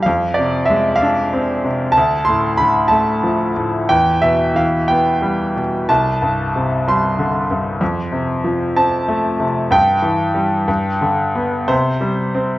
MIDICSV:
0, 0, Header, 1, 2, 480
1, 0, Start_track
1, 0, Tempo, 634921
1, 43, Time_signature, 6, 3, 24, 8
1, 2443, Tempo, 664452
1, 4843, Tempo, 633580
1, 7723, Tempo, 665188
1, 9332, End_track
2, 0, Start_track
2, 0, Title_t, "Grand piano"
2, 0, Program_c, 0, 0
2, 0, Control_c, 0, 64, 127
2, 20, Note_on_c, 0, 77, 71
2, 48, Note_on_c, 0, 41, 58
2, 54, Control_c, 0, 64, 0
2, 181, Control_c, 0, 64, 127
2, 259, Note_on_c, 0, 74, 67
2, 280, Note_off_c, 0, 77, 0
2, 291, Note_on_c, 0, 48, 42
2, 496, Note_on_c, 0, 76, 72
2, 519, Note_off_c, 0, 74, 0
2, 532, Note_on_c, 0, 56, 50
2, 724, Note_on_c, 0, 77, 81
2, 758, Note_off_c, 0, 76, 0
2, 774, Note_on_c, 0, 62, 50
2, 1008, Note_on_c, 0, 60, 50
2, 1219, Note_off_c, 0, 48, 0
2, 1242, Note_on_c, 0, 48, 41
2, 1253, Note_off_c, 0, 77, 0
2, 1450, Note_on_c, 0, 81, 93
2, 1455, Note_off_c, 0, 41, 0
2, 1458, Note_off_c, 0, 56, 0
2, 1467, Note_off_c, 0, 62, 0
2, 1471, Note_off_c, 0, 60, 0
2, 1475, Note_off_c, 0, 48, 0
2, 1490, Note_on_c, 0, 38, 60
2, 1492, Control_c, 0, 64, 0
2, 1604, Control_c, 0, 64, 127
2, 1699, Note_on_c, 0, 84, 84
2, 1713, Note_off_c, 0, 81, 0
2, 1725, Note_on_c, 0, 45, 45
2, 1946, Note_on_c, 0, 83, 83
2, 1957, Note_off_c, 0, 84, 0
2, 1967, Note_on_c, 0, 50, 48
2, 2177, Note_on_c, 0, 81, 75
2, 2200, Note_off_c, 0, 83, 0
2, 2201, Note_on_c, 0, 57, 51
2, 2444, Note_on_c, 0, 53, 49
2, 2638, Note_off_c, 0, 81, 0
2, 2652, Note_off_c, 0, 45, 0
2, 2681, Note_on_c, 0, 45, 43
2, 2893, Note_off_c, 0, 38, 0
2, 2894, Note_off_c, 0, 50, 0
2, 2898, Note_off_c, 0, 57, 0
2, 2905, Note_off_c, 0, 53, 0
2, 2913, Note_off_c, 0, 45, 0
2, 2918, Note_on_c, 0, 79, 87
2, 2921, Note_on_c, 0, 40, 60
2, 2929, Control_c, 0, 64, 0
2, 3041, Control_c, 0, 64, 127
2, 3154, Note_on_c, 0, 76, 75
2, 3160, Note_on_c, 0, 47, 45
2, 3169, Note_off_c, 0, 79, 0
2, 3397, Note_on_c, 0, 52, 42
2, 3404, Note_on_c, 0, 77, 70
2, 3407, Note_off_c, 0, 76, 0
2, 3628, Note_off_c, 0, 77, 0
2, 3633, Note_on_c, 0, 79, 71
2, 3650, Note_on_c, 0, 59, 45
2, 3880, Note_on_c, 0, 55, 44
2, 4097, Note_off_c, 0, 47, 0
2, 4128, Note_on_c, 0, 47, 36
2, 4152, Note_off_c, 0, 79, 0
2, 4335, Note_off_c, 0, 52, 0
2, 4339, Note_off_c, 0, 40, 0
2, 4348, Note_off_c, 0, 59, 0
2, 4350, Note_off_c, 0, 55, 0
2, 4361, Note_off_c, 0, 47, 0
2, 4364, Note_on_c, 0, 81, 82
2, 4369, Note_on_c, 0, 36, 56
2, 4376, Control_c, 0, 64, 0
2, 4501, Control_c, 0, 64, 127
2, 4603, Note_on_c, 0, 43, 44
2, 4846, Note_on_c, 0, 48, 47
2, 5087, Note_on_c, 0, 55, 50
2, 5094, Note_on_c, 0, 84, 82
2, 5105, Note_off_c, 0, 81, 0
2, 5321, Note_on_c, 0, 50, 49
2, 5531, Note_off_c, 0, 43, 0
2, 5565, Note_on_c, 0, 43, 43
2, 5767, Note_off_c, 0, 36, 0
2, 5769, Note_off_c, 0, 48, 0
2, 5775, Note_off_c, 0, 55, 0
2, 5780, Note_off_c, 0, 50, 0
2, 5790, Note_off_c, 0, 43, 0
2, 5794, Note_on_c, 0, 41, 58
2, 5804, Control_c, 0, 64, 0
2, 5920, Control_c, 0, 64, 127
2, 6029, Note_on_c, 0, 48, 45
2, 6274, Note_on_c, 0, 53, 48
2, 6517, Note_on_c, 0, 81, 80
2, 6518, Note_on_c, 0, 60, 51
2, 6561, Note_off_c, 0, 84, 0
2, 6759, Note_on_c, 0, 57, 49
2, 6970, Note_off_c, 0, 48, 0
2, 6996, Note_on_c, 0, 48, 44
2, 7031, Note_off_c, 0, 81, 0
2, 7206, Note_off_c, 0, 41, 0
2, 7211, Note_off_c, 0, 53, 0
2, 7218, Note_off_c, 0, 60, 0
2, 7224, Note_off_c, 0, 57, 0
2, 7228, Note_off_c, 0, 48, 0
2, 7232, Note_on_c, 0, 43, 65
2, 7241, Note_on_c, 0, 79, 84
2, 7248, Control_c, 0, 64, 0
2, 7402, Control_c, 0, 64, 127
2, 7472, Note_on_c, 0, 52, 47
2, 7717, Note_on_c, 0, 55, 51
2, 7937, Note_off_c, 0, 43, 0
2, 7944, Note_off_c, 0, 52, 0
2, 7951, Note_off_c, 0, 55, 0
2, 7956, Note_on_c, 0, 43, 64
2, 7970, Control_c, 0, 64, 0
2, 8100, Control_c, 0, 64, 127
2, 8198, Note_on_c, 0, 50, 51
2, 8443, Note_on_c, 0, 59, 50
2, 8659, Note_off_c, 0, 43, 0
2, 8666, Note_off_c, 0, 50, 0
2, 8675, Note_off_c, 0, 59, 0
2, 8679, Note_on_c, 0, 72, 75
2, 8681, Note_on_c, 0, 48, 68
2, 8693, Control_c, 0, 64, 0
2, 8727, Note_off_c, 0, 79, 0
2, 8827, Control_c, 0, 64, 127
2, 8916, Note_on_c, 0, 55, 47
2, 9161, Note_on_c, 0, 60, 52
2, 9332, Note_off_c, 0, 48, 0
2, 9332, Note_off_c, 0, 55, 0
2, 9332, Note_off_c, 0, 60, 0
2, 9332, Note_off_c, 0, 72, 0
2, 9332, End_track
0, 0, End_of_file